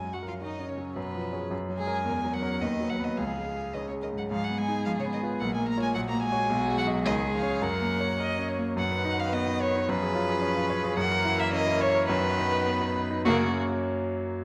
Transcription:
Already playing: grand piano F#2, cello G#3, violin G#5
0.04 grand piano F#3
0.13 cello F#3, violin F#4 F#5
0.23 cello F3, grand piano A#4
0.28 violin F4 F5
0.41 cello D#3, violin D#4 D#5, grand piano F#4
0.59 grand piano C#4
0.69 cello C#3, violin C#4 C#5
0.78 grand piano F#3
0.96 grand piano F#2, cello B2, violin B3 B4
1.15 grand piano F3
1.33 grand piano C#4 G#4
1.51 grand piano F#2
1.69 grand piano F#3
1.78 cello G#3, violin G#4 G#5
1.87 grand piano C#4 A#4
2.05 grand piano E2, violin A#4
2.24 grand piano F#3
2.34 cello F#3, violin F#5
2.42 grand piano C#4 A#4
2.61 grand piano D#2, cello D#3, violin B4 D#5
2.80 grand piano F#3
2.90 cello F#3, violin F#5
2.99 grand piano B3 B4
3.04 cello D#3, violin D#5
3.18 grand piano C#2, cello F3, violin G#4 F5
3.37 grand piano G#3
3.56 grand piano G#4
3.73 cello D#3, grand piano C#4, violin B4 D#5
3.88 cello C#3, violin C#5
3.93 grand piano G#3
4.01 cello D#3, violin A#4 D#5
4.13 grand piano G#2, cello F#3
4.18 violin F#5
4.30 grand piano G#2, cello F3, violin G#4 F5
4.43 cello F#3, violin F#5
4.50 grand piano B3
4.58 cello G#3, violin G#5
4.68 grand piano D#4 G#4
4.85 grand piano G#2, cello F3, violin F5
5.00 cello C#3, violin C#5
5.05 grand piano B3
5.13 cello D#3, violin D#5
5.23 grand piano F4 B4
5.40 grand piano A#1, cello F#3, violin A#4 F#5
5.53 cello G#3, violin G#5
5.59 grand piano A#3
5.68 cello A#3, violin A#5
5.77 grand piano F4 C#5
5.81 cello G#3, violin G#5
5.94 grand piano A#1, cello F#3, violin F#4 F#5
6.07 cello A#3, violin A#5
6.13 grand piano A#3
6.21 cello G#3, violin G#5
6.32 grand piano F#4 C#5
6.49 grand piano B1, violin F#4
6.68 grand piano G#3
6.76 cello F#3, violin F#5
6.87 grand piano F#4 D#5
7.05 grand piano C#2, cello D#3, violin G#4 D#5
7.24 grand piano G#3
7.34 cello F3, violin F5
7.42 grand piano C#4 C#5
7.62 grand piano F#2, cello F#3, violin A#4 F#5
7.81 grand piano A#3
8.00 grand piano C#5
8.20 grand piano A#4, violin D#5
8.39 grand piano C#4
8.49 violin C#5
8.58 grand piano A#3
8.77 grand piano F#2, cello D#3, violin B3 F#5
8.91 grand piano B4
9.05 grand piano D#4
9.18 grand piano B4, violin F5
9.32 grand piano B3, violin D#5
9.47 grand piano D#4
9.60 grand piano B4, violin C#5
9.75 grand piano D#4
9.89 grand piano F#2, cello F3, violin C#4 B4
10.02 grand piano G#4
10.15 grand piano F4
10.29 grand piano G#4
10.42 grand piano C#4
10.57 grand piano F4
10.70 grand piano C#5
10.84 grand piano G#4
10.97 grand piano F#2, cello E3, violin A#3 F#5
11.11 grand piano A#4
11.25 grand piano E4
11.38 grand piano A#4, violin E5
11.52 grand piano C#4, violin D#5
11.67 grand piano E4
11.80 grand piano C#5, violin C#5
11.95 grand piano A#4
12.09 grand piano F#2, cello D#3, violin B3 B4
12.23 grand piano B4
12.38 grand piano D#4
12.52 grand piano B4
12.66 grand piano B3
12.81 grand piano D#4
12.96 grand piano B4
13.11 grand piano D#4
13.25 grand piano F#2 F#3 A#3 C#4 C#5, cello C#3, violin A#3 F#4

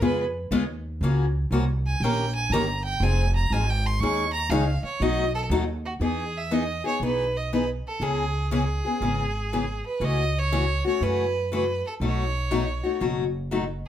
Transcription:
0.01 upright bass F2, steel-string acoustic guitar C#3 G#3 B3 F4 G#4, fiddle B4
0.51 upright bass D#2, steel-string acoustic guitar C#3 G#3 B3 F4 G#4
1.01 upright bass C#2, steel-string acoustic guitar C#3 F3 A#3 C#4 F#4
1.51 upright bass C2, steel-string acoustic guitar C#3 F3 A#3 C#4 F#4
1.87 fiddle G#5
2.00 upright bass A#1, steel-string acoustic guitar D#3 A#3 C#4 G4, fiddle G5
2.05 steel-string acoustic guitar A#4
2.35 fiddle G#5
2.50 upright bass G1, steel-string acoustic guitar D#3 A#3 C#4 G4 A#4, fiddle A#5
2.84 fiddle G5
3.00 upright bass F1, steel-string acoustic guitar F3 C4 D#4 G#4, fiddle G#5
3.35 fiddle A#5
3.50 upright bass G#1, steel-string acoustic guitar F3 C4 D#4 G#4, fiddle G#5
3.69 fiddle G5
3.86 fiddle C6
4.00 upright bass D#2, steel-string acoustic guitar D#3 G#3 C#4 D#4 G#4, fiddle C#6
4.33 fiddle A#5
4.49 upright bass C#2, steel-string acoustic guitar D#3 G#3 C#4 D#4 G#4, fiddle F5
4.83 fiddle C#5, muted upright bass stroke
5.00 upright bass B1, steel-string acoustic guitar B2 F#3 A3 D#4 F#4, fiddle D#5
5.34 fiddle A4
5.50 upright bass D#2, steel-string acoustic guitar B2 F#3 A3 D#4 F#4
5.86 fiddle F#4
6.00 upright bass E2, steel-string acoustic guitar E3 B3 D#4 G#4, fiddle G#4
6.37 fiddle E5
6.51 steel-string acoustic guitar E3 B3 D#4 G#4, fiddle D#5
6.84 steel-string acoustic guitar B3 D#4 G#4, fiddle C#5
7.00 upright bass B1, steel-string acoustic guitar E3 B3 D#4 G#4
7.04 fiddle B4
7.37 fiddle D#5
7.53 steel-string acoustic guitar E3 B3 D#4 G#4, fiddle B4
7.87 fiddle A4
8.00 upright bass C#2, steel-string acoustic guitar C#3 E3 B3 C#4 G#4, fiddle G#4
8.51 steel-string acoustic guitar C#3 E3 B3 C#4 G#4, fiddle G#4
8.85 steel-string acoustic guitar B3 C#4 G#4
9.01 upright bass G#1, steel-string acoustic guitar C#3 E3 B3 C#4 G#4
9.53 steel-string acoustic guitar C#3 E3 B3 C#4 G#4
9.86 fiddle B4
10.00 upright bass C#2, steel-string acoustic guitar C#3 E3 A3 C#4 F#4, fiddle D#5
10.39 fiddle C#5
10.52 steel-string acoustic guitar C#3 E3 A3 C#4 F#4
10.85 steel-string acoustic guitar A3 C#4 F#4, fiddle C#5
11.01 upright bass F#2, steel-string acoustic guitar C#3 E3 A3 C#4 F#4, fiddle B4
11.52 steel-string acoustic guitar C#3 E3 A3 C#4 F#4, fiddle B4
11.87 fiddle A4
12.00 upright bass B1, steel-string acoustic guitar B2 F#3 A3 D#4 F#4
12.05 fiddle C#5
12.51 steel-string acoustic guitar B2 F#3 A3 D#4 F#4
12.83 steel-string acoustic guitar A3 D#4 F#4
13.00 upright bass F#1, steel-string acoustic guitar B2 F#3 A3 D#4 F#4
13.51 steel-string acoustic guitar B2 F#3 A3 D#4 F#4

